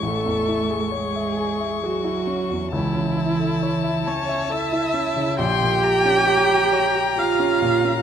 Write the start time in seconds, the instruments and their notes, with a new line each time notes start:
Already playing: violin C#6
0.02 grand piano A1, cello A3, viola A4
0.25 grand piano E2
0.48 grand piano E4
0.70 grand piano G#4
0.92 cello G#3, viola G#4, grand piano C#5
1.15 grand piano E5
1.37 grand piano G#5
1.60 grand piano E5
1.83 cello F#3, viola F#4, grand piano G#4
2.04 grand piano E4
2.27 grand piano C#4
2.50 grand piano E2
2.72 grand piano C#2, cello E3, viola E4, violin A5
2.95 grand piano C#3
3.17 grand piano E4
3.39 grand piano A4
3.63 grand piano C#5
3.83 grand piano E5
4.06 cello C#4, viola C#5, grand piano A5
4.28 grand piano E5
4.50 cello E4, grand piano A4, viola E5
4.72 grand piano E4
4.94 grand piano C#4
5.16 grand piano C#3
5.39 grand piano A#1, cello G4, viola G5, violin C6
5.61 grand piano A#2
5.83 grand piano G4, violin A#5
6.05 grand piano C#4
6.27 grand piano C#5, violin A#5
6.49 grand piano G5
6.73 grand piano C#5
6.95 grand piano G5
7.17 cello F4, grand piano G4, viola F5
7.39 grand piano C#4
7.62 grand piano A#2
7.85 grand piano C#4